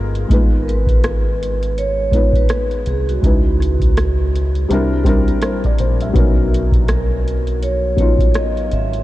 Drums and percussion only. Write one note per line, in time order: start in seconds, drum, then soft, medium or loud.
0.15 closed hi-hat medium
0.30 kick loud
0.30 closed hi-hat medium
0.69 closed hi-hat medium
0.87 kick medium
0.87 closed hi-hat soft
1.04 cross-stick loud
1.04 closed hi-hat medium
1.43 closed hi-hat medium
1.63 closed hi-hat soft
1.78 closed hi-hat medium
2.12 kick medium
2.12 closed hi-hat medium
2.33 kick medium
2.33 closed hi-hat soft
2.49 cross-stick loud
2.49 closed hi-hat medium
2.71 closed hi-hat soft
2.86 closed hi-hat medium
3.09 closed hi-hat soft
3.23 kick loud
3.23 closed hi-hat medium
3.60 cross-stick soft
3.60 closed hi-hat medium
3.79 kick medium
3.79 closed hi-hat soft
3.97 cross-stick loud
3.97 closed hi-hat medium
4.35 closed hi-hat medium
4.55 closed hi-hat soft
4.70 closed hi-hat medium
5.04 kick medium
5.04 closed hi-hat medium
5.28 closed hi-hat soft
5.41 cross-stick loud
5.41 closed hi-hat medium
5.64 kick medium
5.64 closed hi-hat soft
5.79 closed hi-hat medium
6.01 closed hi-hat soft
6.15 kick loud
6.15 closed hi-hat medium
6.54 closed hi-hat medium
6.72 kick medium
6.72 closed hi-hat soft
6.88 cross-stick loud
6.88 closed hi-hat medium
7.28 closed hi-hat medium
7.47 closed hi-hat soft
7.63 closed hi-hat medium
7.97 kick medium
7.97 closed hi-hat medium
8.19 kick medium
8.19 closed hi-hat soft
8.34 cross-stick loud
8.34 closed hi-hat medium
8.57 closed hi-hat soft
8.71 closed hi-hat medium
8.93 closed hi-hat soft